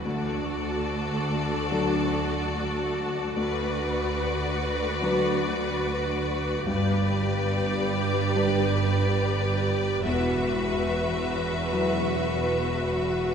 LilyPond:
<<
  \new Staff \with { instrumentName = "Violin section" } { \time 4/4 \key g \major \tempo 4 = 72 d''1 | d''1 | d''1 | e''1 | }
  \new Staff \with { instrumentName = "Violin section" } { \time 4/4 \key g \major a'1 | b'1 | b'1 | b'1 | }
  \new Staff \with { instrumentName = "Viola section" } { \time 4/4 \key g \major fis'1 | fis'1 | g'1 | fis'1 | }
  \new Staff \with { instrumentName = "Grand piano" } { \time 4/4 \key g \major d,2 <fis d' a'>2 | d,2 <fis d' b'>2 | g,2 <g d' b'>2 | e,2 <fis e' b'>2 | }
  \new Staff \with { instrumentName = "Cello section" } { \clef bass \time 4/4 \key g \major d,1 | d,1 | g,1 | e,1 | }
  \new Staff \with { instrumentName = "Double bass section" } { \clef bass \time 4/4 \key g \major d,1 | d,1 | g,,1 | e,,1 | }
>>